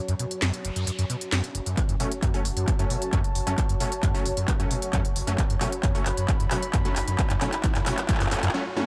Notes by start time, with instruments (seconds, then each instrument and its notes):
Already playing: synth drone F#3 C#4, ambient pad F#4 C#5 A5, noise sweep
0.08 acid bass F#2, closed hi-hat
0.19 acid bass B2, closed hi-hat
0.31 closed hi-hat
0.42 acid bass F#2, snare, closed hi-hat
0.54 closed hi-hat
0.65 acid bass F#1, closed hi-hat
0.76 acid bass F#2, closed hi-hat
0.87 acid bass F#2, closed hi-hat
0.99 acid bass F#2, closed hi-hat
1.10 acid bass B2, closed hi-hat
1.21 closed hi-hat
1.32 acid bass F#2, snare, closed hi-hat
1.44 closed hi-hat
1.55 acid bass F#1, closed hi-hat
1.66 acid bass F#2, closed hi-hat
1.77 ambient pad F#4, kick, clap, closed hi-hat, riser
1.89 acid bass F#2, closed hi-hat
1.97 acid bass B2, supersaw synth F#3 A3 C#4, ambient pad A5, open hi-hat
2.07 ambient pad C#5
2.12 closed hi-hat
2.23 acid bass F#2, kick, clap, closed hi-hat
2.34 supersaw synth F#3 A3 C#4, open hi-hat
2.45 acid bass F#1, open hi-hat
2.57 acid bass F#2, closed hi-hat
2.68 kick, clap, closed hi-hat
2.79 acid bass F#2, supersaw synth F#3 A3 C#4, closed hi-hat
2.90 acid bass B2, open hi-hat
3.02 closed hi-hat
3.13 acid bass F#2, supersaw synth F#3 A3 C#4, kick, clap, closed hi-hat
3.24 closed hi-hat
3.35 acid bass F#1, open hi-hat
3.47 acid bass F#2, supersaw synth F#3 A3 C#4, closed hi-hat
3.58 acid bass F#2, kick, clap, closed hi-hat
3.69 acid bass F#2, closed hi-hat
3.80 acid bass B2, supersaw synth F#3 A3 C#4, open hi-hat
3.92 closed hi-hat
4.03 acid bass F#2, kick, clap, closed hi-hat
4.14 supersaw synth F#3 A3 C#4, open hi-hat
4.26 acid bass F#1, open hi-hat
4.37 acid bass F#2, closed hi-hat
4.48 kick, clap, closed hi-hat
4.60 acid bass F#2, supersaw synth F#3 A3 C#4, closed hi-hat
4.71 acid bass B2, open hi-hat
4.82 closed hi-hat
4.93 acid bass F#2, supersaw synth F#3 A3 C#4, kick, clap, closed hi-hat
5.05 closed hi-hat
5.16 acid bass F#1, open hi-hat
5.27 acid bass F#2, supersaw synth F#3 A3 C#4, closed hi-hat
5.38 acid bass F#2, kick, clap, closed hi-hat
5.50 acid bass F#2, closed hi-hat
5.55 ambient pad B5
5.61 acid bass B2, supersaw synth F#3 A3 C#4, clap, open hi-hat
5.72 closed hi-hat
5.83 acid bass F#2, kick, clap, closed hi-hat
5.95 supersaw synth F#3 A3 C#4, open hi-hat
6.06 acid bass F#1, clap, open hi-hat
6.17 acid bass F#2, closed hi-hat
6.29 kick, clap, closed hi-hat
6.40 acid bass F#2, closed hi-hat
6.51 acid bass B2, supersaw synth F#3 A3 C#4, clap, open hi-hat
6.63 closed hi-hat
6.74 acid bass F#2, kick, clap, closed hi-hat
6.85 supersaw synth F#3 A3 C#4, closed hi-hat
6.96 acid bass F#1, clap, open hi-hat
7.08 acid bass F#2, closed hi-hat
7.19 kick, clap, closed hi-hat
7.30 acid bass F#2, clap, closed hi-hat
7.41 acid bass B2, supersaw synth F#3 A3 C#4, clap, open hi-hat
7.53 clap, closed hi-hat
7.64 acid bass F#2, kick, clap, closed hi-hat
7.75 acid bass F#2, clap, open hi-hat
7.86 acid bass B2, supersaw synth F#3 A3 C#4, clap, open hi-hat
7.98 clap, closed hi-hat
8.09 acid bass F#2, supersaw synth F#3 A3 C#4, kick, clap, closed hi-hat
8.15 clap
8.20 acid bass F#2, clap, open hi-hat
8.26 clap
8.31 acid bass F#2, supersaw synth F#3 A3 C#4, clap, open hi-hat
8.37 clap
8.43 acid bass F#2, clap, closed hi-hat
8.48 clap
8.54 supersaw synth F#3 A3 C#4
8.77 supersaw synth F#3 A3 C#4, high tom